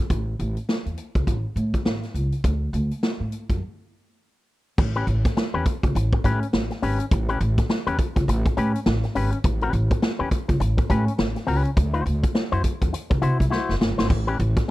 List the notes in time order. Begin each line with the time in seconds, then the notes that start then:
0.10 A1, kick, closed hi-hat
0.39 A1, closed hi-hat
0.57 closed hi-hat
0.69 snare
0.86 E2, closed hi-hat
0.97 closed hi-hat
1.15 C#2, kick, closed hi-hat
1.27 A1, kick, closed hi-hat
1.56 A2, closed hi-hat
1.74 kick, closed hi-hat
1.85 A1, snare
2.03 snare, closed hi-hat
2.14 C#2, closed hi-hat
2.32 closed hi-hat
2.44 D2, kick, closed hi-hat
2.73 D2, closed hi-hat
2.91 closed hi-hat
3.03 snare
3.20 A2
3.32 closed hi-hat
3.49 F#2, kick, closed hi-hat
4.78 A1, muted clean electric guitar stroke, kick, crash
4.95 C#4 G4 B4, closed hi-hat
5.07 A1, closed hi-hat
5.25 muted clean electric guitar stroke, kick, snare, closed hi-hat
5.37 muted clean electric guitar stroke, snare
5.54 E2 C#4 G4 B4
5.66 muted clean electric guitar stroke, kick, closed hi-hat
5.83 C#2, muted clean electric guitar stroke, kick, closed hi-hat
5.95 A1, muted clean electric guitar stroke, closed hi-hat
6.13 muted clean electric guitar stroke, kick
6.24 A2 C#4 G4 B4, kick, closed hi-hat
6.42 muted clean electric guitar stroke, closed hi-hat
6.53 A1, muted clean electric guitar stroke, snare
6.71 muted clean electric guitar stroke, snare, closed hi-hat
6.82 G#1 C#4 G4 B4, open hi-hat
7.00 muted clean electric guitar stroke, closed hi-hat
7.11 A1, muted clean electric guitar stroke, kick, closed hi-hat
7.29 C#4 G4 B4, closed hi-hat
7.41 A1, muted clean electric guitar stroke, closed hi-hat
7.58 muted clean electric guitar stroke, kick, snare, closed hi-hat
7.69 muted clean electric guitar stroke, snare
7.87 E2 C#4 G4 B4, closed hi-hat
7.99 muted clean electric guitar stroke, kick, closed hi-hat
8.16 C#2, muted clean electric guitar stroke, kick, closed hi-hat
8.28 A1, muted clean electric guitar stroke, closed hi-hat
8.46 muted clean electric guitar stroke, kick, closed hi-hat
8.57 A2 C#4 G4 B4, closed hi-hat
8.75 muted clean electric guitar stroke, closed hi-hat
8.86 A1, muted clean electric guitar stroke, snare
9.03 muted clean electric guitar stroke, snare, closed hi-hat
9.15 G#1 C#4 G4 B4, open hi-hat
9.32 muted clean electric guitar stroke, closed hi-hat
9.44 A1, muted clean electric guitar stroke, kick, closed hi-hat
9.61 C#4 G4 B4, closed hi-hat
9.73 A1, closed hi-hat
9.91 muted clean electric guitar stroke, kick, closed hi-hat
10.02 muted clean electric guitar stroke, snare
10.19 E2 C#4 G4 B4
10.31 muted clean electric guitar stroke, kick, closed hi-hat
10.48 C#2, muted clean electric guitar stroke, kick, closed hi-hat
10.60 A1, muted clean electric guitar stroke, closed hi-hat
10.77 muted clean electric guitar stroke, kick, closed hi-hat
10.90 A2 C#4 G4 B4, kick, closed hi-hat
11.07 muted clean electric guitar stroke, closed hi-hat
11.18 A1, muted clean electric guitar stroke, snare
11.36 muted clean electric guitar stroke, snare, closed hi-hat
11.47 C#2 C#4 G4 B4, open hi-hat
11.65 muted clean electric guitar stroke, closed hi-hat
11.76 D2, muted clean electric guitar stroke, kick, closed hi-hat
11.94 E4 F#4 C5, closed hi-hat
12.05 D2, muted clean electric guitar stroke, closed hi-hat
12.23 muted clean electric guitar stroke, kick, closed hi-hat
12.35 muted clean electric guitar stroke, snare
12.52 F#2 E4 F#4 C5, closed hi-hat
12.64 muted clean electric guitar stroke, kick, closed hi-hat
12.81 E2, muted clean electric guitar stroke, kick, closed hi-hat
12.93 muted clean electric guitar stroke, closed hi-hat
13.10 C2, muted clean electric guitar stroke, kick, closed hi-hat
13.22 C3 E4 F#4 C5, closed hi-hat
13.40 C2, muted clean electric guitar stroke, kick, closed hi-hat
13.50 E4 F#4 C5, snare
13.69 F#1, snare
13.80 G1, muted clean electric guitar stroke, snare
13.98 G#1 E4 F#4 C5, snare
14.09 A1, muted clean electric guitar stroke, kick, splash
14.27 C#4 G4 B4, closed hi-hat
14.39 A1, closed hi-hat
14.56 muted clean electric guitar stroke, kick, snare, closed hi-hat